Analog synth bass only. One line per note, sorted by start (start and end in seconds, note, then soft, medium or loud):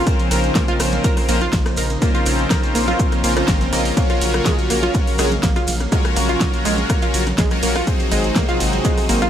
0.31 0.50 A#1 loud
0.80 0.99 A#1 medium
1.29 1.48 A#1 medium
1.53 1.72 A#1 medium
1.78 1.97 A#1 loud
2.26 2.46 A#1 medium
2.75 2.94 A#1 medium
3.24 3.43 A#1 loud
3.48 3.67 G#1 loud
3.73 3.92 A#1 medium
4.21 4.41 A#1 loud
4.70 4.89 A#1 medium
5.19 5.38 A#1 medium
5.43 5.63 A#1 medium
5.68 5.87 A#1 loud
6.17 6.36 A#1 loud
6.65 6.85 A#1 medium
7.14 7.33 A#1 medium
7.38 7.58 A#1 medium
7.63 7.82 A#1 loud
8.12 8.31 G#1 loud
8.60 8.80 G#1 medium
9.09 9.28 G#1 medium